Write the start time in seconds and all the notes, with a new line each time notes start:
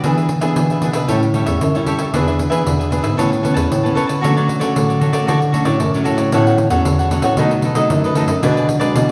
0.03 E3 B3 D4 G#4 B4 E5, pandeiro
0.17 G#4 B4 E5, pandeiro
0.29 muted cavaquinho stroke, pandeiro
0.41 E3 B3 D4 G#4 B4 E5, pandeiro
0.56 B2 E3, pandeiro
0.70 G#4 B4 E5, pandeiro
0.82 B3 D4 G#4 B4 E5, pandeiro
0.93 B2 G#4 B4 E5, pandeiro
1.08 A2 G3 C#4 E4 G4 A4 C#5 E5, pandeiro
1.23 muted cavaquinho stroke, pandeiro
1.34 G3 C#4 E4 G4 A4 C#5 E5, pandeiro
1.46 E2 A4 C#5 E5, pandeiro
1.61 F#2 E3, pandeiro
1.74 G3 C#4 E4 A4 C#5 E5, pandeiro
1.86 G4 A4 C#5 E5, pandeiro
1.99 A4 C#5 E5, pandeiro
2.13 E2 E3 B3 D4 G#4 B4 E5, pandeiro
2.27 G#4 B4 E5, pandeiro
2.39 muted cavaquinho stroke, pandeiro
2.50 E3 B3 D4 G#4 B4 E5, pandeiro
2.66 E2 B2, pandeiro
2.79 G#4 B4 E5, pandeiro
2.91 B3 D4 G#4 B4 E5, pandeiro
3.03 G#2 G#4 B4 E5, pandeiro
3.17 A2 E3 B3 C#4 A4 B4 C#5 A5, pandeiro
3.31 muted cavaquinho stroke, pandeiro
3.43 E3 B3 C#4 A4 B4 C#5 A5, pandeiro
3.54 E2 B4 C#5 A5, pandeiro
3.71 A2 E3, pandeiro
3.83 E3 B3 C#4 B4 C#5 A5, pandeiro
3.95 A4 B4 C#5 A5, pandeiro
4.07 B4 C#5 A5, pandeiro
4.21 D3 F#3 A3 C#4 F#4 A4 C#5 D5, pandeiro
4.36 F#3 A3 C#4 A4 C#5 D5, pandeiro
4.48 muted cavaquinho stroke, pandeiro
4.59 D3 F#3 A3 C#4 A4 C#5 D5, pandeiro
4.76 A2 D3, pandeiro
4.89 A4 C#5 D5, pandeiro
5.00 F#3 A3 C#4 F#4 A4 C#5 D5, pandeiro
5.13 D3 A4 C#5 D5, pandeiro
5.27 D3 F#4 A4 C#5 D5, pandeiro
5.40 muted cavaquinho stroke, pandeiro
5.52 F#3 A3 C#4 F#4 A4 C#5 D5, pandeiro
5.65 A2 A4 C#5 D5, pandeiro
5.80 F#2 A2, pandeiro
5.94 F#3 A3 C#4 A4 C#5 D5, pandeiro
6.04 A2 F#4 A4 C#5 D5, pandeiro
6.17 A4 C#5 D5, pandeiro
6.32 A2 F#3 B3 C#4 E4 A4 C#5 F#5, pandeiro
6.46 A4 C#5 F#5, pandeiro
6.57 muted cavaquinho stroke, pandeiro
6.70 E2 F#3 B3 C#4 A4 C#5 F#5, pandeiro
6.85 E2 E3, pandeiro
6.99 A4 C#5 F#5, pandeiro
7.11 F#3 B3 C#4 E4 A4 C#5 F#5, pandeiro
7.22 A2 A4 C#5 F#5, pandeiro
7.37 B2 F#3 A3 D#4 A4 B4 D#5, pandeiro
7.51 muted cavaquinho stroke, pandeiro
7.62 D#4 A4 B4 D#5, pandeiro
7.74 B2 F#3 A3 D#4 A4 B4 D#5, pandeiro
7.90 F#2, pandeiro
8.04 A4 B4 D#5, pandeiro
8.15 F#3 A3 D#4 A4 B4 D#5, pandeiro
8.27 F#2 A4 B4 D#5, pandeiro
8.42 B2 F#3 G#3 D4 E4 G#4 B4 D5, pandeiro
8.56 G#4 B4 D5, pandeiro
8.68 muted cavaquinho stroke, pandeiro
8.79 B2 F#3 G#3 D4 G#4 B4 D5, pandeiro
8.95 B2, pandeiro